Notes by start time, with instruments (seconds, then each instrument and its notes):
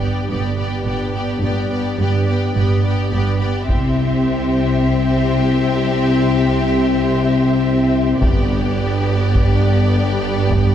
Already playing: double bass section G1, cello section G2, french horn section B3 D4
0.00 viola section B3, violin section G4 D5, taiko
0.28 double bass section G1, cello section G2, viola section B3, violin section G4 D5
0.57 viola section B3, violin section G4 D5
0.85 double bass section G1, cello section G2, viola section B3, violin section G4 D5
1.13 viola section B3, violin section G4 D5
1.41 double bass section G1, cello section G2, viola section B3, violin section G4 D5
1.70 viola section B3, violin section G4 D5
1.98 double bass section G1, cello section G2, viola section B3, violin section G4 D5
2.25 viola section B3, violin section G4 D5
2.55 double bass section G1, cello section G2, viola section B3, violin section G4 D5
2.82 viola section B3, violin section G4 D5
3.09 double bass section G1, cello section G2, viola section B3, violin section G4 D5
3.39 viola section B3, violin section G4 D5
3.67 double bass section C2, cello section C3, french horn section C4 E4, viola section C4, violin section G4 E5, taiko
8.21 double bass section G1, timpani G2, cello section G2, viola section B3, french horn section B3 D4, violin section G4 D5, taiko
9.35 taiko
10.51 taiko